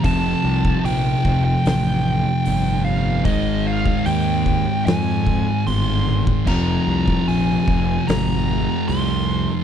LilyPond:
<<
  \new Staff \with { instrumentName = "Lead electric guitar" } { \time 4/4 \key f \dorian \tempo 4 = 75 a''4 g''8. g''4.~ g''16 f''8 | ees''8 f''8 g''4 aes''4 c'''4 | bes''4 aes''4 bes''4 c'''4 | }
  \new Staff \with { instrumentName = "Distorted electric guitar" } { \clef bass \time 4/4 \key f \dorian <f, c f>1 | <aes, ees aes>1 | <f, c f>1 | }
  \new Staff \with { instrumentName = "Distorted electric guitar" } { \clef bass \time 4/4 \key f \dorian <f, c f>1 | <aes, ees aes>1 | <f, c f>1 | }
  \new Staff \with { instrumentName = "Fingered electric bass" } { \clef bass \time 4/4 \key f \dorian f,,8 c,8 bes,,8 f,,8 a,,4 g,,4 | aes,,4 ees,4 f,4 g,,4 | f,,8 c,8 bes,,8 f,,8 aes,,4 c,4 | }
  \new DrumStaff \with { instrumentName = "Drums" } \drummode { \time 4/4 <hho bd>8. bd16 hho8 bd8 <hho sn>4 hho4 | <hho bd>8. bd16 hho8 bd8 <hho sn>8 bd8 hho8 tommh16 bd16 | <cymc bd>8. bd16 hho8 bd8 <hho sn>4 hho4 | }
>>